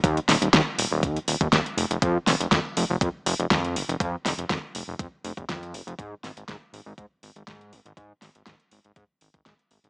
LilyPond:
<<
  \new Staff \with { instrumentName = "Analog synth bass" } { \clef bass \time 4/4 \key f \dorian \tempo 4 = 121 ees,16 r16 ees,,16 ees,,16 ees,16 r16 ees,,16 ees,,16 ees,16 r16 ees,,16 ees,,16 ees,16 r16 f,,16 f,,16 | f,16 r16 f,,16 f,,16 f,16 r16 f,,16 f,,16 f,16 r16 f,,16 f,,16 f,8 f,,16 f,,16 | f,16 r16 f,,16 f,,16 f,16 r16 f,,16 f,,16 f,16 r16 f,,16 f,,16 f,8 f,,16 f,,16 | aes,16 r16 aes,,16 aes,,16 aes,16 r16 aes,,16 aes,,16 aes,16 r16 aes,,16 aes,,16 aes,8 aes,,16 aes,,16 |
aes,16 r16 aes,,16 aes,,16 aes,16 r16 aes,,16 aes,,16 aes,16 r16 aes,,16 aes,,16 aes,16 r16 aes,,16 aes,,16 | }
  \new DrumStaff \with { instrumentName = "Drums" } \drummode { \time 4/4 <hh bd>16 hh16 <hho sn>16 hh16 <hh bd sn>8 hho8 <hh bd>16 hh16 hho16 <hh bd>16 <hh bd sn>16 hh16 hho16 hh16 | <hh bd>8 <hho sn>16 hh16 <hh bd sn>8 hho8 <hh bd>8 hho16 hh16 <hh bd sn>16 hh16 hho16 hh16 | <hh bd>8 <hho sn>16 hh16 <hh bd sn>8 hho8 <hh bd>8 hho16 <hh bd>16 <hh bd sn>16 hh16 hho16 hh16 | <hh bd>8 <hho sn>16 hh16 <hh bd sn>8 hho8 <hh bd>8 hho16 hh16 <hh bd sn>16 hh16 hho16 hh16 |
<hh bd>8 <hho sn>16 hh16 <hh bd sn>16 hh16 hho16 hh16 <hh bd>8 hho16 <hh bd>16 <hh bd sn>16 hh16 hho16 hh16 | }
>>